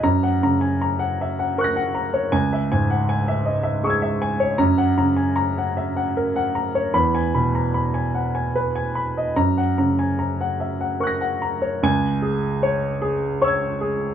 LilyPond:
<<
  \new Staff \with { instrumentName = "Grand piano" } { \time 6/8 \key cis \dorian \tempo 4. = 51 << { ais''8 r4. <cis''' fis''' ais'''>4 | gis''8 r4. <cis''' e''' gis'''>4 | ais''8 r2 r8 | b''8 r2 r8 |
ais''8 r4. <cis''' fis''' ais'''>4 | gis''4 r4 <cis''' e''' gis'''>4 | } \\ { r16 fis''16 ais''16 gis''16 ais''16 fis''16 e''16 fis''16 ais'16 fis''16 ais''16 cis''16 | r16 e''16 gis''16 fis''16 gis''16 e''16 dis''16 e''16 gis'16 e''16 gis''16 cis''16 | r16 fis''16 ais''16 gis''16 ais''16 fis''16 e''16 fis''16 ais'16 fis''16 ais''16 cis''16 | r16 gis''16 b''16 ais''16 b''16 gis''16 fis''16 gis''16 b'16 gis''16 b''16 dis''16 |
r16 fis''16 ais''16 gis''16 ais''16 fis''16 e''16 fis''16 ais'16 fis''16 ais''16 cis''16 | r8 gis'8 cis''8 gis'8 cis''8 gis'8 | } >> }
  \new Staff \with { instrumentName = "Grand piano" } { \clef bass \time 6/8 \key cis \dorian fis,8 cis4 r4. | cis,8 gis,4 r4. | fis,8 cis4 r4. | e,8 b,4 r4. |
fis,8 cis4 r4. | cis,2. | }
>>